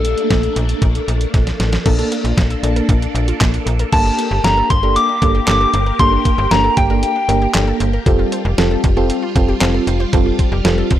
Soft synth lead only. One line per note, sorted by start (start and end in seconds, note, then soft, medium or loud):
0.00 1.30 A4 medium
3.93 4.41 A5 loud
4.44 4.72 A#5 loud
4.70 4.98 C6 loud
4.96 5.47 D6 loud
5.48 6.01 D6 loud
6.00 6.53 C6 loud
6.51 6.79 A#5 loud
6.77 7.02 G5 medium
7.03 7.77 G5 medium